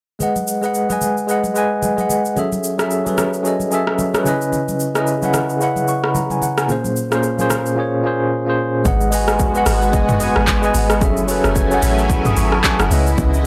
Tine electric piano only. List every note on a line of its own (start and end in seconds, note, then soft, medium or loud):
0.19 0.53 G#3 medium
0.19 0.54 G#4 medium
0.19 0.54 B4 medium
0.19 0.55 D#5 medium
0.19 0.55 F#5 medium
0.61 0.83 G#3 medium
0.61 0.84 G#4 medium
0.61 0.84 B4 medium
0.61 0.85 D#5 medium
0.66 0.85 F#5 medium
0.89 1.21 G#3 medium
0.89 1.22 G#4 medium
0.89 1.22 B4 medium
0.89 1.23 D#5 medium
0.89 1.23 G#5 medium
1.27 1.50 G#3 medium
1.27 1.51 G#4 medium
1.27 1.51 B4 medium
1.27 1.52 D#5 medium
1.31 1.52 F#5 medium
1.54 1.88 G#3 medium
1.54 1.89 G#4 medium
1.54 1.89 B4 medium
1.54 1.90 D#5 medium
1.58 1.90 G#5 loud
1.97 2.29 G#3 medium
1.97 2.30 G#4 medium
1.97 2.30 B4 medium
1.97 2.31 D#5 medium
2.01 2.31 F#5 medium
2.35 2.69 F#3 medium
2.35 2.70 C#4 medium
2.35 2.70 G#4 medium
2.35 2.71 A4 medium
2.35 2.71 E5 medium
2.78 2.99 F#3 medium
2.78 3.00 C#4 medium
2.78 3.00 G#4 medium
2.78 3.01 A4 medium
2.78 3.01 E5 medium
3.05 3.37 F#3 medium
3.05 3.38 C#4 medium
3.05 3.38 G#4 medium
3.05 3.39 A4 medium
3.09 3.39 B4 medium
3.44 3.67 F#3 medium
3.44 3.67 C#4 medium
3.44 3.68 G#4 medium
3.44 3.68 A4 medium
3.44 3.69 D#5 medium
3.71 4.05 F#3 medium
3.71 4.05 C#4 medium
3.71 4.06 G#4 medium
3.71 4.06 A4 medium
3.71 4.07 E5 loud
4.13 4.25 F#3 medium
4.13 4.24 C#4 medium
4.13 4.26 G#4 medium
4.13 4.27 A4 medium
4.17 4.26 B4 medium
4.24 4.79 C#3 medium
4.24 4.80 C#4 medium
4.24 4.80 E4 medium
4.24 4.81 B4 medium
4.28 4.81 D#5 loud
4.94 5.16 C#3 medium
4.94 5.16 C#4 medium
4.94 5.17 E4 medium
4.94 5.17 B4 medium
4.94 5.18 D#5 loud
5.21 5.53 C#3 medium
5.21 5.54 C#4 medium
5.21 5.54 E4 medium
5.21 5.55 B4 medium
5.25 5.55 F#5 medium
5.60 5.83 C#3 medium
5.60 5.83 C#4 medium
5.60 5.84 E4 medium
5.60 5.84 B4 medium
5.60 5.85 F#5 loud
5.89 6.03 C#6 medium
6.04 6.15 B5 medium
6.16 6.30 A#5 medium
6.31 6.42 G#5 medium
6.43 6.57 F#5 medium
6.58 6.84 G#5 medium
6.68 7.02 A#2 medium
6.68 7.02 A#3 medium
6.68 7.03 C#4 medium
6.68 7.03 G#4 medium
6.68 7.04 C5 medium
7.11 7.32 A#2 medium
7.11 7.32 A#3 medium
7.11 7.33 C#4 medium
7.11 7.33 G#4 medium
7.11 7.34 C5 medium
7.38 7.70 A#2 medium
7.38 7.70 A#3 medium
7.38 7.71 C#4 medium
7.38 7.71 G#4 medium
7.38 7.72 C5 medium
7.76 7.99 A#2 medium
7.76 8.00 A#3 medium
7.76 8.00 C#4 medium
7.76 8.00 G#4 medium
7.76 8.01 C#5 medium
8.03 8.37 A#2 medium
8.03 8.37 A#3 medium
8.03 8.38 C#4 medium
8.03 8.38 G#4 medium
8.07 8.39 C5 loud
8.45 8.78 A#2 medium
8.45 8.78 A#3 medium
8.45 8.79 C#4 medium
8.45 8.79 G#4 medium
8.49 8.80 C5 medium
8.84 9.07 G#3 medium
8.84 9.08 G#4 medium
8.84 9.08 B4 medium
8.84 9.09 D#5 medium
8.88 9.09 F#5 medium
9.11 9.45 G#3 medium
9.11 9.45 G#4 medium
9.11 9.46 B4 medium
9.11 9.46 D#5 medium
9.15 9.47 G#5 loud
9.54 9.86 G#3 medium
9.54 9.86 G#4 medium
9.54 9.87 B4 medium
9.54 9.87 D#5 medium
9.58 9.88 F#5 loud
9.92 10.15 G#3 medium
9.92 10.16 G#4 medium
9.92 10.16 B4 medium
9.92 10.17 D#5 medium
9.92 10.17 G#5 medium
10.19 10.53 G#3 medium
10.19 10.54 G#4 medium
10.19 10.54 B4 medium
10.19 10.55 D#5 medium
10.23 10.55 G#5 loud
10.62 10.94 G#3 medium
10.62 10.95 G#4 medium
10.62 10.95 B4 medium
10.62 10.96 D#5 medium
10.62 10.96 G#5 medium
11.00 11.23 F#3 medium
11.00 11.24 C#4 medium
11.00 11.24 G#4 medium
11.00 11.25 A4 medium
11.04 11.25 E5 medium
11.27 11.61 F#3 medium
11.27 11.62 C#4 medium
11.27 11.62 G#4 medium
11.27 11.63 A4 medium
11.27 11.63 B4 loud
11.70 12.02 F#3 medium
11.70 12.03 C#4 medium
11.70 12.03 G#4 medium
11.70 12.04 A4 medium
11.70 12.04 F#5 loud
12.26 12.37 D#6 medium
12.37 12.52 C#6 medium
12.53 12.64 A5 medium
12.65 12.79 G#5 medium
12.80 13.06 F#5 medium
12.89 13.35 C#3 medium
12.89 13.36 C#4 medium
12.89 13.36 E4 medium
12.89 13.37 B4 medium
12.93 13.37 D#5 loud